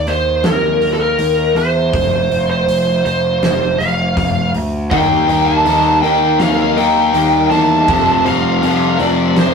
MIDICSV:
0, 0, Header, 1, 7, 480
1, 0, Start_track
1, 0, Tempo, 743494
1, 1252, Time_signature, 4, 2, 24, 8
1, 6160, End_track
2, 0, Start_track
2, 0, Title_t, "Lead electric guitar"
2, 0, Program_c, 0, 29
2, 51, Note_on_c, 0, 72, 84
2, 291, Note_off_c, 0, 72, 0
2, 294, Note_on_c, 0, 70, 83
2, 600, Note_off_c, 0, 70, 0
2, 603, Note_on_c, 0, 69, 60
2, 646, Note_off_c, 0, 69, 0
2, 648, Note_on_c, 0, 70, 77
2, 1012, Note_off_c, 0, 70, 0
2, 1015, Note_on_c, 0, 72, 85
2, 1605, Note_off_c, 0, 72, 0
2, 1613, Note_on_c, 0, 72, 81
2, 1965, Note_off_c, 0, 72, 0
2, 1973, Note_on_c, 0, 72, 89
2, 2443, Note_on_c, 0, 77, 81
2, 2468, Note_off_c, 0, 72, 0
2, 2903, Note_off_c, 0, 77, 0
2, 3170, Note_on_c, 0, 79, 95
2, 3521, Note_off_c, 0, 79, 0
2, 3523, Note_on_c, 0, 81, 93
2, 3878, Note_off_c, 0, 81, 0
2, 3881, Note_on_c, 0, 79, 87
2, 4127, Note_on_c, 0, 77, 93
2, 4134, Note_off_c, 0, 79, 0
2, 4371, Note_on_c, 0, 79, 88
2, 4377, Note_off_c, 0, 77, 0
2, 4840, Note_off_c, 0, 79, 0
2, 4843, Note_on_c, 0, 81, 98
2, 5333, Note_on_c, 0, 77, 91
2, 5342, Note_off_c, 0, 81, 0
2, 5807, Note_off_c, 0, 77, 0
2, 5809, Note_on_c, 0, 74, 88
2, 6057, Note_off_c, 0, 74, 0
2, 6062, Note_on_c, 0, 72, 73
2, 6160, Note_off_c, 0, 72, 0
2, 6160, End_track
3, 0, Start_track
3, 0, Title_t, "Clean electric guitar"
3, 0, Program_c, 1, 27
3, 3170, Note_on_c, 1, 51, 87
3, 3177, Note_on_c, 1, 55, 80
3, 3180, Note_on_c, 1, 58, 89
3, 3185, Note_on_c, 1, 63, 91
3, 3189, Note_on_c, 1, 67, 98
3, 3534, Note_off_c, 1, 67, 0
3, 3537, Note_off_c, 1, 63, 0
3, 3537, Note_on_c, 1, 67, 60
3, 3545, Note_on_c, 1, 63, 60
3, 3546, Note_off_c, 1, 58, 0
3, 3553, Note_on_c, 1, 58, 53
3, 3641, Note_off_c, 1, 51, 0
3, 3649, Note_on_c, 1, 51, 92
3, 3651, Note_off_c, 1, 55, 0
3, 3651, Note_off_c, 1, 58, 0
3, 3654, Note_on_c, 1, 55, 100
3, 3655, Note_off_c, 1, 63, 0
3, 3659, Note_on_c, 1, 58, 88
3, 3662, Note_on_c, 1, 63, 100
3, 3667, Note_off_c, 1, 67, 0
3, 3669, Note_on_c, 1, 67, 95
3, 3890, Note_off_c, 1, 55, 0
3, 3891, Note_off_c, 1, 58, 0
3, 3892, Note_on_c, 1, 55, 72
3, 3897, Note_off_c, 1, 63, 0
3, 3899, Note_on_c, 1, 58, 70
3, 3904, Note_on_c, 1, 63, 68
3, 3908, Note_off_c, 1, 67, 0
3, 3911, Note_on_c, 1, 67, 79
3, 4011, Note_off_c, 1, 63, 0
3, 4013, Note_off_c, 1, 58, 0
3, 4014, Note_off_c, 1, 67, 0
3, 4020, Note_off_c, 1, 55, 0
3, 4131, Note_off_c, 1, 51, 0
3, 4250, Note_on_c, 1, 67, 67
3, 4260, Note_on_c, 1, 63, 67
3, 4269, Note_on_c, 1, 58, 56
3, 4488, Note_off_c, 1, 63, 0
3, 4489, Note_off_c, 1, 58, 0
3, 4493, Note_off_c, 1, 67, 0
3, 4609, Note_on_c, 1, 51, 90
3, 4615, Note_on_c, 1, 55, 99
3, 4620, Note_on_c, 1, 58, 101
3, 4622, Note_on_c, 1, 63, 91
3, 4627, Note_on_c, 1, 67, 109
3, 4723, Note_off_c, 1, 67, 0
3, 4726, Note_on_c, 1, 67, 71
3, 4729, Note_off_c, 1, 63, 0
3, 4737, Note_on_c, 1, 63, 68
3, 4738, Note_off_c, 1, 58, 0
3, 4745, Note_on_c, 1, 58, 62
3, 4843, Note_off_c, 1, 55, 0
3, 4846, Note_off_c, 1, 58, 0
3, 4846, Note_on_c, 1, 55, 61
3, 4851, Note_off_c, 1, 63, 0
3, 4854, Note_on_c, 1, 58, 77
3, 4859, Note_on_c, 1, 63, 76
3, 4862, Note_off_c, 1, 67, 0
3, 4864, Note_on_c, 1, 67, 75
3, 4964, Note_off_c, 1, 67, 0
3, 4967, Note_on_c, 1, 67, 60
3, 4969, Note_off_c, 1, 63, 0
3, 4971, Note_off_c, 1, 51, 0
3, 4977, Note_off_c, 1, 58, 0
3, 4977, Note_on_c, 1, 63, 62
3, 4984, Note_on_c, 1, 58, 51
3, 5079, Note_on_c, 1, 53, 90
3, 5080, Note_off_c, 1, 63, 0
3, 5084, Note_off_c, 1, 58, 0
3, 5086, Note_off_c, 1, 55, 0
3, 5088, Note_on_c, 1, 55, 90
3, 5090, Note_on_c, 1, 60, 88
3, 5095, Note_on_c, 1, 65, 88
3, 5098, Note_off_c, 1, 67, 0
3, 5101, Note_on_c, 1, 69, 96
3, 5436, Note_off_c, 1, 69, 0
3, 5444, Note_on_c, 1, 69, 62
3, 5446, Note_off_c, 1, 65, 0
3, 5453, Note_on_c, 1, 65, 60
3, 5455, Note_off_c, 1, 60, 0
3, 5463, Note_on_c, 1, 60, 62
3, 5554, Note_off_c, 1, 53, 0
3, 5561, Note_on_c, 1, 53, 84
3, 5563, Note_off_c, 1, 55, 0
3, 5564, Note_off_c, 1, 60, 0
3, 5566, Note_on_c, 1, 55, 96
3, 5569, Note_off_c, 1, 65, 0
3, 5572, Note_off_c, 1, 69, 0
3, 5572, Note_on_c, 1, 60, 107
3, 5577, Note_on_c, 1, 65, 109
3, 5580, Note_on_c, 1, 69, 110
3, 5799, Note_off_c, 1, 55, 0
3, 5802, Note_off_c, 1, 60, 0
3, 5802, Note_on_c, 1, 55, 64
3, 5808, Note_off_c, 1, 65, 0
3, 5810, Note_on_c, 1, 60, 79
3, 5813, Note_off_c, 1, 69, 0
3, 5816, Note_on_c, 1, 65, 69
3, 5821, Note_on_c, 1, 69, 85
3, 5921, Note_off_c, 1, 69, 0
3, 5923, Note_off_c, 1, 60, 0
3, 5924, Note_off_c, 1, 65, 0
3, 5925, Note_off_c, 1, 55, 0
3, 6046, Note_off_c, 1, 53, 0
3, 6160, End_track
4, 0, Start_track
4, 0, Title_t, "Distorted electric guitar"
4, 0, Program_c, 2, 30
4, 3171, Note_on_c, 2, 51, 90
4, 3176, Note_on_c, 2, 58, 98
4, 3177, Note_on_c, 2, 63, 97
4, 3406, Note_off_c, 2, 51, 0
4, 3408, Note_off_c, 2, 58, 0
4, 3412, Note_off_c, 2, 63, 0
4, 3414, Note_on_c, 2, 51, 83
4, 3416, Note_on_c, 2, 58, 66
4, 3420, Note_on_c, 2, 63, 69
4, 3645, Note_off_c, 2, 51, 0
4, 3646, Note_off_c, 2, 58, 0
4, 3652, Note_off_c, 2, 63, 0
4, 3653, Note_on_c, 2, 51, 80
4, 3654, Note_on_c, 2, 58, 76
4, 3660, Note_on_c, 2, 63, 94
4, 3888, Note_off_c, 2, 51, 0
4, 3889, Note_off_c, 2, 58, 0
4, 3893, Note_off_c, 2, 63, 0
4, 3895, Note_on_c, 2, 51, 82
4, 3897, Note_on_c, 2, 58, 87
4, 3901, Note_on_c, 2, 63, 92
4, 4122, Note_off_c, 2, 51, 0
4, 4128, Note_off_c, 2, 58, 0
4, 4130, Note_off_c, 2, 63, 0
4, 4130, Note_on_c, 2, 51, 79
4, 4135, Note_on_c, 2, 58, 91
4, 4138, Note_on_c, 2, 63, 100
4, 4364, Note_off_c, 2, 51, 0
4, 4366, Note_off_c, 2, 58, 0
4, 4369, Note_off_c, 2, 63, 0
4, 4372, Note_on_c, 2, 51, 82
4, 4374, Note_on_c, 2, 58, 83
4, 4377, Note_on_c, 2, 63, 91
4, 4600, Note_off_c, 2, 51, 0
4, 4603, Note_off_c, 2, 58, 0
4, 4606, Note_off_c, 2, 63, 0
4, 4607, Note_on_c, 2, 51, 88
4, 4611, Note_on_c, 2, 58, 91
4, 4614, Note_on_c, 2, 63, 95
4, 4840, Note_off_c, 2, 51, 0
4, 4841, Note_off_c, 2, 58, 0
4, 4844, Note_off_c, 2, 63, 0
4, 4847, Note_on_c, 2, 51, 73
4, 4848, Note_on_c, 2, 58, 71
4, 4852, Note_on_c, 2, 63, 81
4, 5076, Note_off_c, 2, 51, 0
4, 5076, Note_off_c, 2, 58, 0
4, 5078, Note_off_c, 2, 63, 0
4, 5089, Note_on_c, 2, 41, 87
4, 5093, Note_on_c, 2, 48, 95
4, 5095, Note_on_c, 2, 53, 103
4, 5318, Note_off_c, 2, 41, 0
4, 5323, Note_off_c, 2, 48, 0
4, 5325, Note_off_c, 2, 53, 0
4, 5326, Note_on_c, 2, 41, 72
4, 5331, Note_on_c, 2, 48, 74
4, 5333, Note_on_c, 2, 53, 87
4, 5560, Note_off_c, 2, 41, 0
4, 5566, Note_off_c, 2, 48, 0
4, 5567, Note_off_c, 2, 53, 0
4, 5568, Note_on_c, 2, 41, 77
4, 5574, Note_on_c, 2, 48, 78
4, 5575, Note_on_c, 2, 53, 75
4, 5803, Note_off_c, 2, 41, 0
4, 5805, Note_off_c, 2, 48, 0
4, 5810, Note_off_c, 2, 53, 0
4, 5810, Note_on_c, 2, 41, 87
4, 5812, Note_on_c, 2, 48, 89
4, 5817, Note_on_c, 2, 53, 104
4, 6038, Note_off_c, 2, 41, 0
4, 6045, Note_off_c, 2, 48, 0
4, 6046, Note_on_c, 2, 41, 95
4, 6047, Note_off_c, 2, 53, 0
4, 6053, Note_on_c, 2, 48, 93
4, 6055, Note_on_c, 2, 53, 99
4, 6160, Note_off_c, 2, 41, 0
4, 6160, Note_off_c, 2, 48, 0
4, 6160, Note_off_c, 2, 53, 0
4, 6160, End_track
5, 0, Start_track
5, 0, Title_t, "Picked electric bass"
5, 0, Program_c, 3, 34
5, 47, Note_on_c, 3, 39, 86
5, 274, Note_off_c, 3, 39, 0
5, 291, Note_on_c, 3, 39, 92
5, 746, Note_off_c, 3, 39, 0
5, 769, Note_on_c, 3, 39, 85
5, 996, Note_off_c, 3, 39, 0
5, 1004, Note_on_c, 3, 40, 79
5, 1233, Note_off_c, 3, 40, 0
5, 1250, Note_on_c, 3, 29, 77
5, 1477, Note_off_c, 3, 29, 0
5, 1488, Note_on_c, 3, 29, 81
5, 1716, Note_off_c, 3, 29, 0
5, 1728, Note_on_c, 3, 29, 86
5, 1956, Note_off_c, 3, 29, 0
5, 1970, Note_on_c, 3, 29, 81
5, 2197, Note_off_c, 3, 29, 0
5, 2212, Note_on_c, 3, 29, 82
5, 2438, Note_off_c, 3, 29, 0
5, 2451, Note_on_c, 3, 29, 77
5, 2678, Note_off_c, 3, 29, 0
5, 2691, Note_on_c, 3, 29, 88
5, 2918, Note_off_c, 3, 29, 0
5, 2934, Note_on_c, 3, 38, 89
5, 3159, Note_off_c, 3, 38, 0
5, 3172, Note_on_c, 3, 39, 77
5, 3399, Note_off_c, 3, 39, 0
5, 3413, Note_on_c, 3, 39, 78
5, 3639, Note_off_c, 3, 39, 0
5, 3654, Note_on_c, 3, 39, 85
5, 3879, Note_off_c, 3, 39, 0
5, 3891, Note_on_c, 3, 39, 90
5, 4118, Note_off_c, 3, 39, 0
5, 4130, Note_on_c, 3, 39, 88
5, 4586, Note_off_c, 3, 39, 0
5, 4605, Note_on_c, 3, 39, 81
5, 4834, Note_off_c, 3, 39, 0
5, 4849, Note_on_c, 3, 40, 83
5, 5076, Note_off_c, 3, 40, 0
5, 5089, Note_on_c, 3, 29, 80
5, 5316, Note_off_c, 3, 29, 0
5, 5329, Note_on_c, 3, 29, 82
5, 5556, Note_off_c, 3, 29, 0
5, 5570, Note_on_c, 3, 29, 77
5, 5796, Note_off_c, 3, 29, 0
5, 5808, Note_on_c, 3, 29, 82
5, 6035, Note_off_c, 3, 29, 0
5, 6052, Note_on_c, 3, 29, 89
5, 6160, Note_off_c, 3, 29, 0
5, 6160, End_track
6, 0, Start_track
6, 0, Title_t, "Muted clean electric guitar strokes"
6, 4016, Note_on_c, 9, 29, 48
6, 4081, Note_off_c, 9, 29, 0
6, 4495, Note_on_c, 9, 29, 50
6, 4560, Note_off_c, 9, 29, 0
6, 5929, Note_on_c, 9, 29, 49
6, 5994, Note_off_c, 9, 29, 0
6, 6160, End_track
7, 0, Start_track
7, 0, Title_t, "Drums"
7, 45, Note_on_c, 9, 46, 41
7, 109, Note_off_c, 9, 46, 0
7, 283, Note_on_c, 9, 46, 61
7, 284, Note_on_c, 9, 38, 102
7, 348, Note_off_c, 9, 38, 0
7, 348, Note_off_c, 9, 46, 0
7, 527, Note_on_c, 9, 46, 50
7, 591, Note_off_c, 9, 46, 0
7, 767, Note_on_c, 9, 46, 63
7, 831, Note_off_c, 9, 46, 0
7, 1009, Note_on_c, 9, 46, 47
7, 1073, Note_off_c, 9, 46, 0
7, 1249, Note_on_c, 9, 36, 103
7, 1252, Note_on_c, 9, 46, 65
7, 1314, Note_off_c, 9, 36, 0
7, 1316, Note_off_c, 9, 46, 0
7, 1495, Note_on_c, 9, 46, 46
7, 1559, Note_off_c, 9, 46, 0
7, 1733, Note_on_c, 9, 46, 67
7, 1798, Note_off_c, 9, 46, 0
7, 1974, Note_on_c, 9, 46, 47
7, 2038, Note_off_c, 9, 46, 0
7, 2213, Note_on_c, 9, 46, 68
7, 2214, Note_on_c, 9, 38, 92
7, 2278, Note_off_c, 9, 46, 0
7, 2279, Note_off_c, 9, 38, 0
7, 2455, Note_on_c, 9, 46, 53
7, 2519, Note_off_c, 9, 46, 0
7, 2692, Note_on_c, 9, 36, 82
7, 2693, Note_on_c, 9, 46, 66
7, 2756, Note_off_c, 9, 36, 0
7, 2758, Note_off_c, 9, 46, 0
7, 2933, Note_on_c, 9, 46, 54
7, 2998, Note_off_c, 9, 46, 0
7, 3171, Note_on_c, 9, 46, 75
7, 3172, Note_on_c, 9, 36, 108
7, 3236, Note_off_c, 9, 46, 0
7, 3237, Note_off_c, 9, 36, 0
7, 3416, Note_on_c, 9, 46, 45
7, 3480, Note_off_c, 9, 46, 0
7, 3652, Note_on_c, 9, 46, 57
7, 3653, Note_on_c, 9, 38, 31
7, 3717, Note_off_c, 9, 46, 0
7, 3718, Note_off_c, 9, 38, 0
7, 3895, Note_on_c, 9, 46, 40
7, 3960, Note_off_c, 9, 46, 0
7, 4131, Note_on_c, 9, 38, 98
7, 4131, Note_on_c, 9, 46, 57
7, 4195, Note_off_c, 9, 46, 0
7, 4196, Note_off_c, 9, 38, 0
7, 4374, Note_on_c, 9, 46, 54
7, 4438, Note_off_c, 9, 46, 0
7, 4611, Note_on_c, 9, 46, 68
7, 4676, Note_off_c, 9, 46, 0
7, 4851, Note_on_c, 9, 46, 46
7, 4916, Note_off_c, 9, 46, 0
7, 5090, Note_on_c, 9, 36, 118
7, 5092, Note_on_c, 9, 46, 66
7, 5155, Note_off_c, 9, 36, 0
7, 5157, Note_off_c, 9, 46, 0
7, 5333, Note_on_c, 9, 46, 54
7, 5397, Note_off_c, 9, 46, 0
7, 5571, Note_on_c, 9, 46, 59
7, 5636, Note_off_c, 9, 46, 0
7, 5806, Note_on_c, 9, 46, 46
7, 5871, Note_off_c, 9, 46, 0
7, 6046, Note_on_c, 9, 38, 99
7, 6046, Note_on_c, 9, 46, 69
7, 6110, Note_off_c, 9, 46, 0
7, 6111, Note_off_c, 9, 38, 0
7, 6160, End_track
0, 0, End_of_file